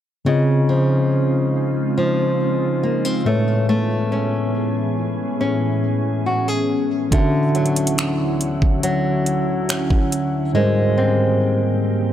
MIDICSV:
0, 0, Header, 1, 5, 480
1, 0, Start_track
1, 0, Tempo, 857143
1, 147, Time_signature, 4, 2, 24, 8
1, 6792, End_track
2, 0, Start_track
2, 0, Title_t, "Tine electric piano"
2, 0, Program_c, 0, 4
2, 140, Note_on_c, 0, 49, 72
2, 145, Note_on_c, 0, 60, 65
2, 152, Note_on_c, 0, 65, 63
2, 158, Note_on_c, 0, 75, 73
2, 248, Control_c, 0, 64, 127
2, 1801, Note_off_c, 0, 49, 0
2, 1804, Note_off_c, 0, 60, 0
2, 1807, Note_off_c, 0, 65, 0
2, 1810, Note_off_c, 0, 75, 0
2, 1821, Note_on_c, 0, 45, 67
2, 1827, Note_on_c, 0, 56, 56
2, 1833, Note_on_c, 0, 71, 57
2, 1835, Control_c, 0, 64, 0
2, 1839, Note_on_c, 0, 73, 70
2, 1920, Control_c, 0, 64, 127
2, 3721, Note_off_c, 0, 45, 0
2, 3725, Note_off_c, 0, 56, 0
2, 3727, Note_off_c, 0, 71, 0
2, 3731, Note_off_c, 0, 73, 0
2, 3980, Note_on_c, 0, 50, 71
2, 3986, Note_on_c, 0, 61, 63
2, 3992, Note_on_c, 0, 66, 65
2, 3994, Control_c, 0, 64, 0
2, 3998, Note_on_c, 0, 76, 78
2, 4084, Control_c, 0, 64, 127
2, 5881, Note_off_c, 0, 50, 0
2, 5884, Note_off_c, 0, 61, 0
2, 5887, Note_off_c, 0, 66, 0
2, 5890, Note_off_c, 0, 76, 0
2, 5900, Note_on_c, 0, 44, 70
2, 5906, Note_on_c, 0, 55, 67
2, 5911, Note_on_c, 0, 70, 65
2, 5915, Control_c, 0, 64, 0
2, 5917, Note_on_c, 0, 72, 76
2, 6018, Control_c, 0, 64, 127
2, 6792, Note_off_c, 0, 44, 0
2, 6792, Note_off_c, 0, 55, 0
2, 6792, Note_off_c, 0, 70, 0
2, 6792, Note_off_c, 0, 72, 0
2, 6792, End_track
3, 0, Start_track
3, 0, Title_t, "Ambient pad"
3, 0, Program_c, 1, 92
3, 148, Note_on_c, 1, 49, 81
3, 148, Note_on_c, 1, 56, 71
3, 148, Note_on_c, 1, 60, 71
3, 148, Note_on_c, 1, 63, 73
3, 148, Note_on_c, 1, 65, 90
3, 1811, Note_off_c, 1, 49, 0
3, 1811, Note_off_c, 1, 56, 0
3, 1811, Note_off_c, 1, 60, 0
3, 1811, Note_off_c, 1, 63, 0
3, 1811, Note_off_c, 1, 65, 0
3, 1826, Note_on_c, 1, 45, 77
3, 1826, Note_on_c, 1, 52, 72
3, 1826, Note_on_c, 1, 61, 69
3, 1826, Note_on_c, 1, 68, 86
3, 1827, Note_on_c, 1, 59, 74
3, 3965, Note_off_c, 1, 45, 0
3, 3965, Note_off_c, 1, 52, 0
3, 3965, Note_off_c, 1, 59, 0
3, 3965, Note_off_c, 1, 68, 0
3, 3985, Note_on_c, 1, 66, 91
3, 3986, Note_on_c, 1, 38, 80
3, 3986, Note_on_c, 1, 50, 74
3, 3986, Note_on_c, 1, 64, 75
3, 5884, Note_off_c, 1, 61, 0
3, 5887, Note_off_c, 1, 38, 0
3, 5887, Note_off_c, 1, 50, 0
3, 5887, Note_off_c, 1, 64, 0
3, 5887, Note_off_c, 1, 66, 0
3, 5906, Note_on_c, 1, 44, 79
3, 5906, Note_on_c, 1, 60, 69
3, 5907, Note_on_c, 1, 58, 75
3, 5907, Note_on_c, 1, 67, 91
3, 5908, Note_on_c, 1, 51, 75
3, 6792, Note_off_c, 1, 44, 0
3, 6792, Note_off_c, 1, 51, 0
3, 6792, Note_off_c, 1, 58, 0
3, 6792, Note_off_c, 1, 60, 0
3, 6792, Note_off_c, 1, 67, 0
3, 6792, End_track
4, 0, Start_track
4, 0, Title_t, "Nylon-string guitar"
4, 0, Program_c, 2, 24
4, 146, Note_on_c, 2, 49, 77
4, 386, Note_on_c, 2, 53, 56
4, 1100, Note_off_c, 2, 53, 0
4, 1106, Note_on_c, 2, 53, 61
4, 1587, Note_on_c, 2, 58, 53
4, 1706, Note_off_c, 2, 58, 0
4, 1706, Note_on_c, 2, 60, 54
4, 1824, Note_off_c, 2, 53, 0
4, 1826, Note_on_c, 2, 57, 74
4, 1875, Note_off_c, 2, 49, 0
4, 1875, Note_off_c, 2, 60, 0
4, 2064, Note_off_c, 2, 57, 0
4, 2067, Note_on_c, 2, 57, 79
4, 2307, Note_on_c, 2, 61, 56
4, 3025, Note_off_c, 2, 61, 0
4, 3028, Note_on_c, 2, 61, 64
4, 3507, Note_on_c, 2, 66, 54
4, 3628, Note_off_c, 2, 66, 0
4, 3628, Note_on_c, 2, 68, 52
4, 3988, Note_on_c, 2, 50, 80
4, 4027, Note_off_c, 2, 57, 0
4, 4036, Note_off_c, 2, 68, 0
4, 4228, Note_on_c, 2, 54, 58
4, 4940, Note_off_c, 2, 54, 0
4, 4947, Note_on_c, 2, 54, 67
4, 4988, Note_off_c, 2, 61, 0
4, 5427, Note_on_c, 2, 61, 55
4, 5904, Note_off_c, 2, 54, 0
4, 5907, Note_off_c, 2, 50, 0
4, 5907, Note_on_c, 2, 56, 82
4, 5955, Note_off_c, 2, 61, 0
4, 6146, Note_on_c, 2, 60, 59
4, 6792, Note_off_c, 2, 56, 0
4, 6792, Note_off_c, 2, 60, 0
4, 6792, End_track
5, 0, Start_track
5, 0, Title_t, "Drums"
5, 3987, Note_on_c, 9, 36, 99
5, 3988, Note_on_c, 9, 42, 71
5, 4043, Note_off_c, 9, 36, 0
5, 4044, Note_off_c, 9, 42, 0
5, 4227, Note_on_c, 9, 42, 44
5, 4283, Note_off_c, 9, 42, 0
5, 4287, Note_on_c, 9, 42, 55
5, 4343, Note_off_c, 9, 42, 0
5, 4348, Note_on_c, 9, 42, 68
5, 4404, Note_off_c, 9, 42, 0
5, 4407, Note_on_c, 9, 42, 82
5, 4463, Note_off_c, 9, 42, 0
5, 4469, Note_on_c, 9, 42, 67
5, 4473, Note_on_c, 9, 26, 108
5, 4525, Note_off_c, 9, 42, 0
5, 4529, Note_off_c, 9, 26, 0
5, 4708, Note_on_c, 9, 42, 68
5, 4764, Note_off_c, 9, 42, 0
5, 4827, Note_on_c, 9, 36, 76
5, 4883, Note_off_c, 9, 36, 0
5, 4946, Note_on_c, 9, 42, 66
5, 5002, Note_off_c, 9, 42, 0
5, 5188, Note_on_c, 9, 42, 64
5, 5244, Note_off_c, 9, 42, 0
5, 5426, Note_on_c, 9, 42, 65
5, 5433, Note_on_c, 9, 26, 102
5, 5482, Note_off_c, 9, 42, 0
5, 5489, Note_off_c, 9, 26, 0
5, 5546, Note_on_c, 9, 36, 85
5, 5602, Note_off_c, 9, 36, 0
5, 5669, Note_on_c, 9, 42, 65
5, 5725, Note_off_c, 9, 42, 0
5, 6792, End_track
0, 0, End_of_file